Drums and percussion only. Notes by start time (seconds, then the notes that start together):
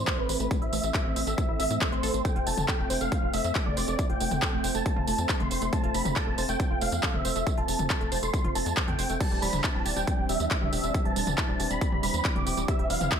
0.07 kick, clap, closed hi-hat
0.29 open hi-hat, tambourine
0.40 closed hi-hat, tambourine
0.51 kick, closed hi-hat, tambourine
0.62 closed hi-hat
0.73 open hi-hat, tambourine
0.84 closed hi-hat, tambourine
0.94 kick, clap, closed hi-hat, tambourine
1.16 open hi-hat, tambourine
1.27 closed hi-hat, tambourine
1.38 kick, closed hi-hat, tambourine
1.60 open hi-hat, tambourine
1.71 closed hi-hat, tambourine
1.81 kick, clap, closed hi-hat, tambourine
1.92 closed hi-hat
2.03 open hi-hat, tambourine
2.14 closed hi-hat, tambourine
2.25 kick, closed hi-hat, tambourine
2.36 closed hi-hat
2.47 open hi-hat, tambourine
2.58 mid tom, tambourine
2.68 kick, clap, closed hi-hat
2.90 open hi-hat, tambourine
3.01 closed hi-hat, tambourine
3.12 kick, closed hi-hat, tambourine
3.33 open hi-hat, tambourine
3.44 closed hi-hat, tambourine
3.55 kick, clap, closed hi-hat, tambourine
3.66 mid tom
3.77 open hi-hat, tambourine
3.88 closed hi-hat, tambourine
3.99 kick, closed hi-hat, tambourine
4.10 closed hi-hat
4.20 open hi-hat, tambourine
4.31 mid tom, tambourine
4.42 kick, clap, closed hi-hat, tambourine
4.64 open hi-hat, tambourine
4.75 closed hi-hat, tambourine
4.86 kick, closed hi-hat, tambourine
4.97 mid tom
5.07 open hi-hat, tambourine
5.18 closed hi-hat, tambourine
5.29 kick, clap, closed hi-hat, tambourine
5.40 closed hi-hat, mid tom
5.51 open hi-hat, tambourine
5.62 closed hi-hat, tambourine
5.73 kick, closed hi-hat, tambourine
5.84 closed hi-hat
5.94 open hi-hat, tambourine
6.05 closed hi-hat, mid tom, tambourine
6.16 kick, clap, closed hi-hat, tambourine
6.38 open hi-hat, tambourine
6.49 closed hi-hat, tambourine
6.60 kick, closed hi-hat, tambourine
6.81 open hi-hat, tambourine
6.92 closed hi-hat, tambourine
7.03 kick, clap, closed hi-hat, tambourine
7.14 mid tom
7.25 open hi-hat, tambourine
7.36 closed hi-hat, tambourine
7.47 kick, closed hi-hat, tambourine
7.57 closed hi-hat
7.68 open hi-hat, tambourine
7.79 closed hi-hat, mid tom, tambourine
7.90 kick, clap, closed hi-hat, tambourine
8.01 closed hi-hat
8.12 open hi-hat, tambourine
8.23 closed hi-hat, tambourine
8.34 kick, closed hi-hat, tambourine
8.44 closed hi-hat, mid tom
8.55 open hi-hat, tambourine
8.66 closed hi-hat, tambourine
8.77 kick, clap, closed hi-hat
8.88 closed hi-hat, mid tom
8.99 open hi-hat, tambourine
9.10 closed hi-hat, tambourine
9.21 kick, closed hi-hat, tambourine, crash
9.31 closed hi-hat
9.42 open hi-hat, tambourine
9.53 closed hi-hat, mid tom, tambourine
9.64 kick, clap, closed hi-hat, tambourine
9.86 open hi-hat, tambourine
9.97 closed hi-hat, tambourine
10.07 kick, closed hi-hat, tambourine
10.29 open hi-hat, tambourine
10.40 closed hi-hat, tambourine
10.51 kick, clap, closed hi-hat, tambourine
10.62 mid tom
10.73 open hi-hat, tambourine
10.84 closed hi-hat, tambourine
10.94 kick, closed hi-hat, tambourine
11.05 closed hi-hat
11.16 open hi-hat, tambourine
11.27 closed hi-hat, mid tom, tambourine
11.38 kick, clap, closed hi-hat, tambourine
11.60 open hi-hat, tambourine
11.71 closed hi-hat, tambourine
11.81 kick, closed hi-hat, tambourine
11.92 mid tom
12.03 open hi-hat, tambourine
12.14 tambourine
12.25 kick, clap, closed hi-hat, tambourine
12.36 closed hi-hat, mid tom
12.47 open hi-hat, tambourine
12.57 closed hi-hat, tambourine
12.68 kick, closed hi-hat, tambourine
12.79 closed hi-hat
12.90 open hi-hat, tambourine
13.01 closed hi-hat, mid tom, tambourine
13.12 kick, clap, closed hi-hat, tambourine